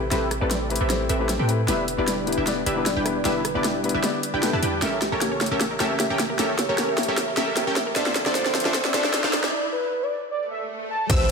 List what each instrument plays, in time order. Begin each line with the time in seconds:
Already playing: analog synth pad C3 A3 G4 B4
0.02 soft synth lead C5
0.11 808-style bass A1, grand piano A3 C4 E4 G4 B4, supersaw synth C4 G4 A4 B4 E5, snare, closed hi-hat
0.31 soft synth lead A4, cross-stick, closed hi-hat
0.41 808-style bass A1, grand piano A3 C4 E4 G4 B4, supersaw synth C4 G4 A4 B4 D5
0.51 snare, closed hi-hat
0.61 soft synth lead C5
0.70 grand piano A3 C4 E4 G4 B4, closed hi-hat
0.76 closed hi-hat
0.81 808-style bass A1, supersaw synth C4 G4 A4 B4 E5
0.89 grand piano A3 C4 E4 G4 C5, soft synth lead C5, snare, closed hi-hat
1.09 808-style bass A1, supersaw synth C4 G4 A4 B4 E5, soft synth lead C5, closed hi-hat
1.19 grand piano A3 C4 E4 G4 B4
1.29 snare, closed hi-hat
1.39 808-style bass A2, supersaw synth C4 G4 A4 B4 G5
1.48 grand piano A3 C4 E4 G4 B4, soft synth lead C5, closed hi-hat
1.67 808-style bass E1, analog synth pad D3 G3 E4, grand piano B3 D4 E4 G4 B4, supersaw synth D4 E4 G4 B4 E5, soft synth lead D5, snare, closed hi-hat
1.88 closed hi-hat
1.97 808-style bass E1, grand piano B3 D4 E4 G4 B4, supersaw synth D4 E4 G4 B4 D5, soft synth lead B4
2.08 snare, closed hi-hat
2.26 grand piano B3 D4 E4 G4 B4, soft synth lead B4, closed hi-hat
2.32 closed hi-hat
2.38 808-style bass E1, supersaw synth D4 E4 G4 B4 E5
2.46 grand piano B3 D4 E4 G4 D5, snare, closed hi-hat
2.57 soft synth lead D5
2.66 808-style bass E1, supersaw synth D4 E4 G4 B4 E5, closed hi-hat
2.76 grand piano B3 D4 E4 G4 B4
2.86 soft synth lead D5, snare, closed hi-hat
2.96 808-style bass E1, supersaw synth D4 E4 G4 B4 G5
3.05 grand piano B3 D4 E4 G4 B4, cross-stick, closed hi-hat
3.16 soft synth lead D5
3.24 808-style bass E1, grand piano B3 D4 E4 G4 B4, supersaw synth D4 E4 G4 B4 E5, snare, closed hi-hat
3.45 soft synth lead B4, cross-stick, closed hi-hat
3.54 808-style bass E1, grand piano B3 D4 E4 G4 B4, supersaw synth D4 E4 G4 B4 D5
3.64 snare, closed hi-hat
3.75 soft synth lead D5
3.83 grand piano B3 D4 E4 G4 B4, closed hi-hat
3.89 closed hi-hat
3.94 808-style bass E1, supersaw synth D4 E4 G4 B4 E5
4.03 grand piano B3 D4 E4 G4 D5, soft synth lead D5, snare, closed hi-hat
4.23 soft synth lead D5, closed hi-hat
4.34 808-style bass E1, supersaw synth D4 E4 G4 B4 G5
4.42 grand piano B3 D4 E4 G4 A4, snare, closed hi-hat
4.53 808-style bass E2, supersaw synth D4 E4 G4 B4 A5
4.63 808-style bass E2, supersaw synth D4 E4 G4 B4 G5, soft synth lead G5, closed hi-hat
4.82 808-style bass A1, analog synth pad C#3 A3 A#3 G4, supersaw synth C#4 G4 A4 A#4 E5, synth arpeggio sound G4, soft synth lead E5, snare, closed hi-hat, riser
4.93 synth arpeggio sound A#4
5.02 synth arpeggio sound G4, snare, closed hi-hat
5.12 808-style bass A1, supersaw synth C#4 G4 A4 A#4 C#5, synth arpeggio sound A#4, soft synth lead C#5
5.21 synth arpeggio sound G4, snare, closed hi-hat
5.32 synth arpeggio sound C#5
5.41 synth arpeggio sound G4, soft synth lead C#5, snare, closed hi-hat
5.46 closed hi-hat
5.51 808-style bass A1, supersaw synth C#4 G4 A4 A#4 E5, synth arpeggio sound A#4
5.60 synth arpeggio sound G4, snare, closed hi-hat
5.71 synth arpeggio sound A#4, soft synth lead E5
5.80 808-style bass A1, supersaw synth C#4 G4 A4 A#4 E5, synth arpeggio sound G4, snare, closed hi-hat
5.91 synth arpeggio sound C#5
6.00 synth arpeggio sound G4, soft synth lead E5, snare, closed hi-hat
6.10 808-style bass A1, supersaw synth C#4 G4 A4 A#4 G5, synth arpeggio sound A#4
6.19 synth arpeggio sound G4, snare, closed hi-hat
6.30 synth arpeggio sound A#4, soft synth lead E5
6.39 808-style bass A1, supersaw synth C#4 G4 A4 A#4 E5, synth arpeggio sound G4, snare, closed hi-hat
6.49 synth arpeggio sound C#5
6.59 synth arpeggio sound G4, soft synth lead C#5, snare, closed hi-hat
6.69 808-style bass A1, supersaw synth C#4 G4 A4 A#4 C#5, synth arpeggio sound A#4
6.78 synth arpeggio sound G4, snare, closed hi-hat
6.89 synth arpeggio sound A#4, soft synth lead E5
6.98 synth arpeggio sound G4, snare, closed hi-hat
7.03 closed hi-hat
7.08 808-style bass A1, supersaw synth C#4 G4 A4 A#4 E5, synth arpeggio sound C#5
7.17 synth arpeggio sound G4, soft synth lead E5, snare, closed hi-hat
7.28 synth arpeggio sound A#4
7.37 808-style bass A1, supersaw synth C#4 G4 A4 A#4 E5, synth arpeggio sound G4, soft synth lead E5, snare, closed hi-hat
7.48 synth arpeggio sound A#4
7.57 synth arpeggio sound G4, snare, closed hi-hat
7.67 808-style bass A1, supersaw synth C#4 G4 A4 A#4 G5, synth arpeggio sound C#5
7.76 synth arpeggio sound G4, soft synth lead E5, snare, closed hi-hat
7.87 synth arpeggio sound A#4
7.96 808-style bass D2, analog synth pad D3 F3 C4 E5, supersaw synth D4 F4 A4 C5 E5, synth arpeggio sound A4, soft synth lead D5, snare, closed hi-hat
8.06 synth arpeggio sound D5, snare
8.15 synth arpeggio sound A4, snare, closed hi-hat
8.26 808-style bass D2, supersaw synth D4 F4 A4 C5 D5, soft synth lead C5, synth arpeggio sound E5, snare
8.35 synth arpeggio sound A4, snare, closed hi-hat
8.46 synth arpeggio sound D5, snare
8.55 synth arpeggio sound A4, soft synth lead C5, snare, closed hi-hat
8.60 closed hi-hat
8.65 808-style bass D2, supersaw synth D4 F4 A4 C5 E5, synth arpeggio sound D5, snare
8.74 synth arpeggio sound A4, snare, closed hi-hat
8.85 soft synth lead D5, synth arpeggio sound E5, snare
8.94 808-style bass D2, supersaw synth D4 F4 A4 C5 E5, synth arpeggio sound A4, snare, closed hi-hat
9.04 synth arpeggio sound D5, snare
9.14 synth arpeggio sound A4, soft synth lead D5, snare, closed hi-hat
9.24 808-style bass D2, supersaw synth D4 F4 A4 C5 F5, synth arpeggio sound D5, snare
9.33 synth arpeggio sound A4, snare, closed hi-hat
9.44 soft synth lead D5, synth arpeggio sound E5, snare
9.72 soft synth lead B4
10.03 soft synth lead D5
10.31 soft synth lead D5, swell
10.51 soft synth lead E5
10.90 soft synth lead A5
11.10 808-style bass A1, supersaw synth C4 G4 A4 B4 E5, synth arpeggio sound G4, soft synth lead C5, synth pluck E6, kick, closed hi-hat, crash, impact
11.20 synth arpeggio sound B4